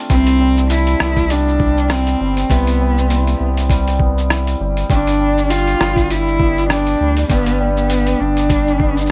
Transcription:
Already playing: D3 A3 C4 F4
0.10 C2 C3 C4 E4, kick, open hi-hat, shaker
0.27 open hi-hat, shaker
0.40 G3
0.57 shaker
0.70 E4, open hi-hat, shaker
0.87 open hi-hat, shaker
1.00 C2 B3, cross-stick
1.17 kick, open hi-hat, shaker
1.30 G3 D4, open hi-hat, shaker
1.48 shaker
1.60 kick
1.78 shaker
1.90 C4 E4, cross-stick, open hi-hat, shaker
2.07 open hi-hat, shaker
2.20 G1 G3
2.37 open hi-hat, shaker
2.50 C2 C3 B3 E4, kick, open hi-hat, shaker
2.67 open hi-hat, shaker
2.80 G3
2.98 shaker
3.10 E4, open hi-hat, shaker
3.27 open hi-hat, shaker
3.40 C2 B3
3.57 open hi-hat, shaker
3.70 G3, kick, open hi-hat, shaker
3.88 open hi-hat, shaker
4.00 B3, kick
4.18 shaker
4.30 E4, cross-stick, open hi-hat, shaker
4.47 open hi-hat, shaker
4.60 G1 G3
4.77 open hi-hat
4.90 G1 G2 D4 G4, kick, open hi-hat, shaker
5.07 open hi-hat, shaker
5.20 G3
5.38 shaker
5.50 F4 G4, open hi-hat, shaker
5.67 open hi-hat, shaker
5.80 G1 B3, cross-stick
5.96 kick, open hi-hat, shaker
6.10 G3 E4, open hi-hat, shaker
6.28 shaker
6.40 B3, kick
6.58 shaker
6.70 D4 G4, cross-stick, open hi-hat, shaker
6.87 open hi-hat, shaker
7.01 D2 G3
7.17 open hi-hat, shaker
7.30 G1 G2 B3 G4, kick, open hi-hat, shaker
7.46 open hi-hat, shaker
7.60 G3
7.77 B3, shaker
7.90 G4, open hi-hat, shaker
8.07 open hi-hat, shaker
8.20 G1 B3 D4
8.37 open hi-hat, shaker
8.50 G3, kick, open hi-hat, shaker
8.68 shaker
8.80 B3, kick
8.97 shaker
9.01 shaker
9.06 shaker

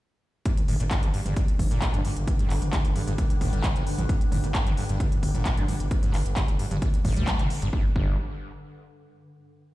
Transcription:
0.46 G2 D3, kick, closed hi-hat
0.57 closed hi-hat, mid tom
0.68 G1 A2, open hi-hat
0.80 G1 A#2, closed hi-hat
0.91 G2, kick, clap, closed hi-hat, mid tom
1.03 G1 G3, closed hi-hat
1.14 G2, open hi-hat
1.26 G1 G2, closed hi-hat, mid tom
1.36 G2, kick, closed hi-hat
1.48 closed hi-hat
1.59 G1, kick, mid tom, open hi-hat
1.71 G1 A#2, closed hi-hat
1.82 kick, clap, closed hi-hat
1.94 G2 G3, closed hi-hat, mid tom
2.05 G2, open hi-hat
2.17 G1, closed hi-hat
2.27 kick, closed hi-hat, mid tom
2.39 G2, closed hi-hat
2.50 G1, clap, open hi-hat
2.62 G1, closed hi-hat, mid tom
2.73 G2, kick, clap, closed hi-hat
2.85 G1, closed hi-hat
2.96 G2, mid tom, open hi-hat
3.07 G1 G2, closed hi-hat
3.18 A#2, kick, closed hi-hat
3.30 closed hi-hat, mid tom
3.41 G1 A2, kick, open hi-hat
3.53 G1 G3, closed hi-hat
3.64 G2, kick, clap, closed hi-hat, mid tom
3.76 A1 C3, closed hi-hat
3.87 open hi-hat
3.98 A1 G2, closed hi-hat, mid tom
4.09 G2, kick, closed hi-hat
4.21 closed hi-hat
4.32 G1 A2, mid tom, open hi-hat
4.44 G1 A#2, closed hi-hat
4.55 G2, kick, clap, closed hi-hat
4.67 G1 G3, closed hi-hat, mid tom
4.77 G2, open hi-hat
4.89 G1 G2, closed hi-hat
5.00 G2, kick, closed hi-hat, mid tom
5.12 closed hi-hat
5.23 G1, kick, open hi-hat
5.35 G1 A#2, closed hi-hat, mid tom
5.46 kick, clap, closed hi-hat
5.57 G2 G3, closed hi-hat
5.68 G2, mid tom, open hi-hat
5.80 G1, closed hi-hat
5.91 kick, closed hi-hat
6.03 G2, closed hi-hat, mid tom
6.14 G1, clap, open hi-hat
6.26 G1, closed hi-hat
6.36 G2, kick, clap, closed hi-hat, mid tom
6.48 G1, closed hi-hat
6.59 G2, open hi-hat
6.71 G1 G2, closed hi-hat, mid tom
6.82 A#2, kick, closed hi-hat
6.94 closed hi-hat
7.05 G1 A2, kick, mid tom, open hi-hat
7.16 D2 G3, closed hi-hat
7.27 G2, kick, clap, closed hi-hat
7.39 G1 C3, closed hi-hat, mid tom
7.50 open hi-hat
7.62 G1 G2, closed hi-hat
7.73 G1 G2, kick
7.96 G1 G2, kick

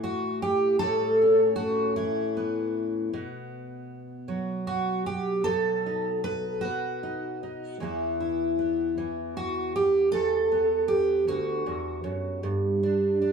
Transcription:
Already playing: A2 E3
0.04 F#4
0.42 G4
0.79 A2 A4
1.22 C#4
1.56 F#4
1.96 E3 E4
2.37 B3
3.13 B2
4.28 F#3
4.67 F#4
5.06 G4
5.44 B2 A4
5.86 D#4
6.24 B4
6.61 B3 F#4
7.03 D#4
7.43 D#4
7.80 E2 E3 B3 E4
8.20 E4
8.59 B3
8.98 E3
9.37 F#4
9.76 G4
10.12 E2 A4
10.52 B3
10.88 G4
11.27 D2 F#4
11.66 E2
12.04 F#2
12.43 G2
12.83 D4
13.22 D4

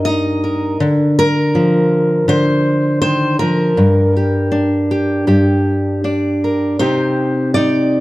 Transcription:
Already playing: G2 A#3 A#4
0.05 D#4 D#5
0.44 A#4
0.80 D3
1.19 A#4
1.55 F3
2.28 D3 C5
3.02 D#3 C5
3.39 F3 A#4
3.77 G2
4.17 G4
4.52 D4
4.91 G4
5.27 G2 G4
6.04 D4 D5
6.44 A#4
6.79 C3 D#4 G4 C5
7.54 D#4 D5

